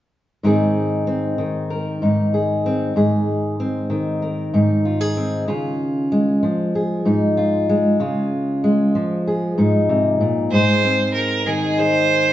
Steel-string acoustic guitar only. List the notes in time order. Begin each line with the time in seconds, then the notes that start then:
0.43 G#2 D#3 C4 D#4 G#4
1.07 C4
1.38 D#3
1.70 A#4
2.02 G#2 D#4
2.34 G#4
2.66 C4
2.96 G#2 G#4
3.60 C4
3.90 D#3
4.22 A#4
4.54 G#2 D#4
4.85 F4
5.01 G#4
5.17 C4
5.48 C#3 F4
6.12 G#3
6.43 F3
6.75 G#4
7.05 G#2 D#4
7.37 F4
7.69 G#3
8.00 C#3 F4
8.64 G#3
8.95 F3
9.27 G#4
9.58 G#2 D#4
9.89 C3
10.21 A#2
10.52 G#2 G#4
10.84 C4
11.46 D#3 D#4
11.79 G#4